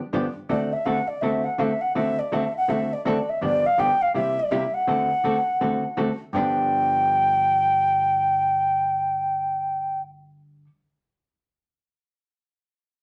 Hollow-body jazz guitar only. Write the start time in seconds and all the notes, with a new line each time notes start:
0.13 G2 D3 F3 B3 D4 G4
0.49 D3 A3 C4 F#4 A4
0.86 D3 A3 C4 F#4 A4
1.22 D3 A3 C4 F#4 A4
1.58 D3 A3 C4 F#4 A4
1.95 D3 A3 C4 F#4 A4
2.32 D3 A3 C4 F#4 A4
2.68 D3 A3 C4 F#4 A4
3.05 D3 A3 C4 F#4 A4
3.41 G2 D3 F3 B3 D4 G4
3.78 G2 D3 F3 B3 D4 G4
4.14 C3 G3 A#3 E4 G4
4.51 C3 G3 A#3 E4 G4
4.87 D3 A3 C4 F#4 A4
5.24 D3 A3 C4 F#4 A4
5.61 D3 A3 C4 F#4 A4
5.97 D3 A3 C4 F#4 A4
6.33 G2 D3 F3 B3 D4 G4